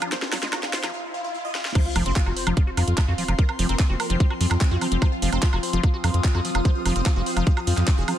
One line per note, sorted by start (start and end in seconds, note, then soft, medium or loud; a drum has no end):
0.00 0.94 F3 medium
0.00 0.10 F3 loud
0.00 0.94 C4 medium
0.00 0.94 F4 medium
0.00 0.08 F4 medium
0.00 0.94 F5 medium
0.00 0.94 C6 medium
0.00 closed hi-hat medium
0.00 riser medium
0.00 high woodblock medium
0.12 0.15 F3 loud
0.12 0.19 A#3 medium
0.12 0.18 C5 loud
0.12 snare medium
0.12 closed hi-hat medium
0.22 0.29 A#3 medium
0.22 0.29 F4 medium
0.22 snare medium
0.32 0.38 F#3 loud
0.32 0.39 F4 medium
0.32 snare medium
0.32 open hi-hat loud
0.32 high woodblock soft
0.43 0.48 G#3 loud
0.43 0.49 C5 loud
0.43 snare medium
0.43 closed hi-hat medium
0.53 0.59 F4 medium
0.53 0.61 F#4 medium
0.53 snare loud
0.53 closed hi-hat medium
0.53 high woodblock medium
0.63 0.69 F4 medium
0.63 snare medium
0.73 0.79 F4 medium
0.73 0.80 C5 medium
0.73 snare loud
0.73 open hi-hat loud
0.83 0.92 F3 loud
0.83 0.90 F4 medium
0.83 snare medium
0.83 closed hi-hat medium
0.83 high woodblock soft
0.94 1.00 F4 medium
0.94 swell medium
1.14 1.20 F4 medium
1.24 1.31 F4 medium
1.35 1.41 F4 medium
1.45 1.51 D#5 loud
1.55 1.61 F4 medium
1.55 snare medium
1.65 1.71 F4 medium
1.65 snare medium
1.75 1.81 F3 loud
1.75 8.18 F3 medium
1.75 8.18 C4 medium
1.75 1.82 C5 loud
1.75 kick loud
1.75 closed hi-hat medium
1.75 crash loud
1.75 sub drop medium
1.75 high woodblock soft
1.82 8.18 F4 medium
1.82 1.92 F4 medium
1.96 2.02 F1 medium
1.96 2.04 F3 loud
1.96 2.02 F4 medium
1.96 open hi-hat loud
1.96 high woodblock medium
2.06 2.12 F1 medium
2.06 2.11 C4 medium
2.06 2.12 C5 loud
2.06 closed hi-hat medium
2.16 2.22 F4 medium
2.16 kick loud
2.16 clap loud
2.16 closed hi-hat medium
2.26 2.32 F1 medium
2.26 2.33 F4 medium
2.26 2.32 F#4 medium
2.26 high woodblock soft
2.37 2.43 C5 medium
2.37 8.18 F5 medium
2.37 open hi-hat loud
2.46 2.53 F1 medium
2.46 2.55 F3 loud
2.46 2.53 F4 medium
2.46 5.75 C6 medium
2.46 closed hi-hat medium
2.46 high woodblock medium
2.57 kick loud
2.57 closed hi-hat medium
2.67 2.70 F#4 medium
2.77 2.83 F2 medium
2.77 2.83 F3 medium
2.77 2.88 C4 loud
2.77 2.84 F4 medium
2.77 open hi-hat loud
2.77 high woodblock soft
2.88 2.94 F2 medium
2.88 2.94 F4 medium
2.88 closed hi-hat medium
2.98 3.01 G#3 medium
2.98 3.04 F4 medium
2.98 kick loud
2.98 clap loud
2.98 closed hi-hat medium
2.98 high woodblock medium
3.08 3.14 F2 medium
3.08 3.14 F4 loud
3.08 3.14 F#4 medium
3.18 3.24 F3 medium
3.18 3.25 F4 medium
3.18 open hi-hat medium
3.28 3.34 F1 medium
3.28 3.34 F3 medium
3.28 3.35 F4 medium
3.28 closed hi-hat medium
3.28 high woodblock soft
3.39 3.44 F3 loud
3.39 3.45 A#4 loud
3.39 kick loud
3.39 closed hi-hat medium
3.49 3.55 C4 medium
3.49 high woodblock medium
3.59 3.65 F1 medium
3.59 3.67 F3 loud
3.59 3.65 C4 medium
3.59 open hi-hat loud
3.69 3.75 F1 medium
3.69 4.10 A#3 loud
3.69 3.75 C4 medium
3.69 3.76 A#4 loud
3.69 closed hi-hat medium
3.79 3.86 C4 medium
3.79 3.85 F4 medium
3.79 kick loud
3.79 clap loud
3.79 closed hi-hat medium
3.79 high woodblock soft
3.90 3.96 F1 medium
3.90 3.96 C4 medium
3.90 3.95 F#4 medium
4.00 4.06 A#4 medium
4.00 open hi-hat loud
4.00 high woodblock medium
4.10 4.16 F1 medium
4.10 4.18 F3 loud
4.10 4.16 C4 medium
4.10 closed hi-hat medium
4.20 4.27 C4 medium
4.20 kick loud
4.20 closed hi-hat medium
4.30 4.34 F#4 medium
4.30 high woodblock soft
4.41 4.47 F2 loud
4.41 4.46 F3 medium
4.41 4.47 C4 medium
4.41 open hi-hat loud
4.51 4.57 F2 medium
4.51 4.57 C4 medium
4.51 clap soft
4.51 closed hi-hat medium
4.51 high woodblock medium
4.61 4.64 G#3 medium
4.61 4.67 C4 medium
4.61 kick loud
4.61 clap loud
4.61 closed hi-hat medium
4.71 4.77 F2 medium
4.71 4.78 F4 medium
4.71 4.77 F#4 medium
4.81 4.87 F3 medium
4.81 4.88 C4 medium
4.81 open hi-hat loud
4.81 high woodblock soft
4.92 4.98 F1 medium
4.92 4.97 F3 medium
4.92 4.98 C4 medium
4.92 closed hi-hat medium
5.02 5.07 F3 loud
5.02 5.08 C5 loud
5.02 kick loud
5.02 closed hi-hat medium
5.02 high woodblock medium
5.12 5.18 F4 medium
5.22 5.28 F1 medium
5.22 5.31 F3 loud
5.22 5.29 F4 medium
5.22 open hi-hat loud
5.32 5.38 F1 medium
5.32 5.38 C4 medium
5.32 5.39 C5 loud
5.32 closed hi-hat medium
5.32 high woodblock soft
5.43 5.49 F4 medium
5.43 5.48 F4 medium
5.43 kick loud
5.43 clap loud
5.43 closed hi-hat medium
5.53 5.59 F1 medium
5.53 5.59 F4 medium
5.53 5.58 F#4 medium
5.53 high woodblock medium
5.63 5.69 C5 medium
5.63 open hi-hat loud
5.73 5.79 F1 medium
5.73 5.82 F3 loud
5.73 5.80 F4 medium
5.73 8.18 D#6 medium
5.73 closed hi-hat medium
5.83 5.90 F4 medium
5.83 kick loud
5.83 closed hi-hat medium
5.83 high woodblock soft
5.94 5.97 F#4 medium
6.04 6.10 F2 loud
6.04 6.09 F3 medium
6.04 6.15 C4 medium
6.04 6.10 F4 medium
6.04 open hi-hat loud
6.04 high woodblock medium
6.14 6.20 F2 medium
6.14 6.20 F4 medium
6.14 closed hi-hat medium
6.24 6.28 G#3 medium
6.24 6.31 F4 medium
6.24 kick loud
6.24 clap loud
6.24 closed hi-hat medium
6.34 6.41 F2 medium
6.34 6.41 F4 loud
6.34 6.40 F#4 medium
6.34 high woodblock soft
6.45 6.50 F3 medium
6.45 6.51 F4 medium
6.45 open hi-hat loud
6.55 6.61 F1 medium
6.55 6.60 F3 medium
6.55 6.61 F4 medium
6.55 closed hi-hat medium
6.55 high woodblock medium
6.65 6.71 F3 loud
6.65 6.72 A#3 medium
6.65 6.71 C5 loud
6.65 kick loud
6.65 closed hi-hat medium
6.75 6.82 A#3 medium
6.75 6.82 F4 medium
6.86 6.92 F1 loud
6.86 6.94 F3 loud
6.86 6.92 F4 medium
6.86 open hi-hat loud
6.86 high woodblock soft
6.96 7.02 F1 medium
6.96 7.01 C4 medium
6.96 7.02 C5 loud
6.96 closed hi-hat medium
7.06 7.11 F4 medium
7.06 7.12 F4 medium
7.06 kick loud
7.06 clap loud
7.06 closed hi-hat medium
7.06 high woodblock medium
7.16 7.22 F1 medium
7.16 7.22 F4 medium
7.16 7.22 F#4 medium
7.26 7.33 C5 loud
7.26 open hi-hat loud
7.37 7.43 F1 medium
7.37 7.45 F3 loud
7.37 7.43 F4 medium
7.37 closed hi-hat medium
7.37 high woodblock soft
7.47 7.53 F4 medium
7.47 kick loud
7.47 closed hi-hat medium
7.57 7.60 F#4 medium
7.57 high woodblock medium
7.67 7.73 F2 loud
7.67 7.73 F3 medium
7.67 7.73 F4 medium
7.67 open hi-hat loud
7.77 7.83 F2 medium
7.77 7.84 F4 medium
7.77 clap soft
7.77 closed hi-hat medium
7.88 7.91 G#3 medium
7.88 7.94 F4 medium
7.88 kick loud
7.88 clap loud
7.88 closed hi-hat medium
7.88 high woodblock soft
7.98 8.04 F1 medium
7.98 8.03 F#4 medium
7.98 8.04 G#4 loud
8.08 8.14 F3 medium
8.08 8.18 C4 medium
8.08 8.14 F4 medium
8.08 open hi-hat medium
8.08 high woodblock medium